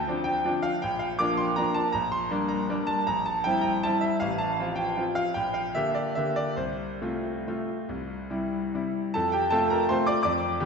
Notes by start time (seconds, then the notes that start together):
Already playing: D2 G5 A5
0.08 F3 C4 D4
0.24 G5
0.45 F3 C4 D4
0.63 F5
0.82 A#1 G5
0.99 F5
1.19 F3 A#3 D4 D6
1.37 C6
1.56 F3 A#3 D4 A#5
1.74 A5
1.92 A#1 A#5
2.12 C6
2.30 G3 A#3 D4
2.48 A#5
2.69 G3 A#3 D4
2.87 A5
3.07 A#1 A#5
3.26 A5
3.44 G3 C4 E4 G5
3.61 A#5
3.83 G3 C4 E4 A5
4.01 E5
4.20 A1 F5
4.38 A5
4.59 F3 C4 F4
4.76 G5
4.97 F3 C4 F4
5.15 F5
5.34 A#1 G5
5.54 F5
5.75 D3 A#3 G4 E5
5.95 D5
6.15 D3 A#3 G4 E5
6.36 D5
6.56 C2 C5
7.02 C3 A3 F4
7.47 C3 A3 F4
7.89 C2
8.30 C3 G3 E4
8.74 C3 G3 E4
9.14 F2 A4 A5
9.32 G4 G5
9.50 C3 A3 F4 A4 A5
9.70 A#4 A#5
9.89 C3 A3 F4 C5 C6
10.07 D5 D6
10.23 F2 D5 D6
10.60 D3 B3 G4